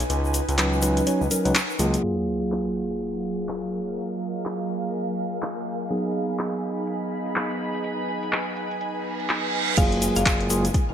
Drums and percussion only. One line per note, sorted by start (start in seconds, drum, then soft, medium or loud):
0.00 closed hi-hat medium
0.00 shaker soft
0.10 closed hi-hat medium
0.10 shaker medium
0.25 shaker soft
0.34 open hi-hat loud
0.34 shaker medium
0.49 closed hi-hat medium
0.49 shaker soft
0.58 clap loud
0.58 closed hi-hat medium
0.58 shaker medium
0.73 shaker soft
0.82 open hi-hat loud
0.82 shaker medium
0.97 closed hi-hat medium
0.97 shaker soft
1.07 closed hi-hat medium
1.07 shaker medium
1.21 shaker soft
1.31 open hi-hat loud
1.31 shaker medium
1.45 closed hi-hat medium
1.45 shaker soft
1.55 clap loud
1.55 closed hi-hat medium
1.55 shaker medium
1.70 shaker soft
1.79 open hi-hat loud
1.79 shaker medium
1.94 closed hi-hat medium
1.94 shaker soft
2.03 closed hi-hat medium
2.28 closed hi-hat soft
2.42 closed hi-hat soft
2.52 clap loud
2.76 closed hi-hat soft
2.90 closed hi-hat medium
3.00 closed hi-hat medium
3.39 closed hi-hat medium
3.48 clap loud
3.48 closed hi-hat medium
3.87 closed hi-hat medium
3.97 closed hi-hat medium
4.21 closed hi-hat soft
4.36 closed hi-hat soft
4.45 clap loud
4.45 closed hi-hat medium
4.70 closed hi-hat soft
4.84 closed hi-hat medium
4.94 closed hi-hat medium
5.33 closed hi-hat soft
5.42 clap loud
5.42 closed hi-hat medium
5.81 closed hi-hat medium
5.91 closed hi-hat medium
6.15 closed hi-hat soft
6.29 closed hi-hat soft
6.39 clap loud
6.39 closed hi-hat medium
6.63 closed hi-hat soft
6.78 closed hi-hat medium
6.87 closed hi-hat medium
7.26 closed hi-hat soft
7.36 clap loud
7.36 closed hi-hat medium
7.74 closed hi-hat medium
7.84 closed hi-hat medium
8.08 closed hi-hat soft
8.23 closed hi-hat soft
8.32 clap loud
8.32 closed hi-hat medium
8.57 closed hi-hat soft
8.71 closed hi-hat medium
8.81 closed hi-hat medium
9.20 closed hi-hat soft
9.29 clap loud
9.29 closed hi-hat medium
9.68 closed hi-hat medium
9.78 kick loud
9.78 closed hi-hat medium
9.78 crash loud
9.78 shaker soft
9.92 closed hi-hat soft
10.02 open hi-hat loud
10.02 shaker medium
10.16 closed hi-hat medium
10.16 shaker medium
10.26 kick loud
10.26 clap loud
10.26 closed hi-hat medium
10.26 shaker soft
10.40 closed hi-hat soft
10.50 open hi-hat loud
10.50 shaker medium
10.65 closed hi-hat medium
10.65 shaker medium
10.74 kick loud
10.74 closed hi-hat medium